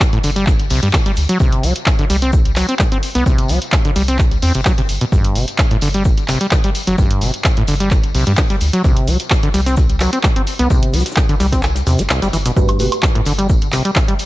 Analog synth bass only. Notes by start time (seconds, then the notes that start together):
0.24 G1
0.70 B1
0.83 G2
1.17 D2
1.40 C2
1.63 C2
2.10 C2
3.15 C2
3.26 C2
3.49 C2
3.96 C2
4.42 E2
4.55 G1
4.89 G1
5.12 G1
5.35 G1
5.82 G1
6.87 G1
6.98 G1
7.22 G1
7.68 G1
8.15 B1
8.27 G2
8.61 D2
8.84 C2
9.08 C2
9.54 C2
10.59 C2
10.70 C2
10.94 C2
11.40 C2
11.87 E2
11.99 G1
12.22 G1
12.33 G1
12.56 G1
12.80 G1
13.26 G1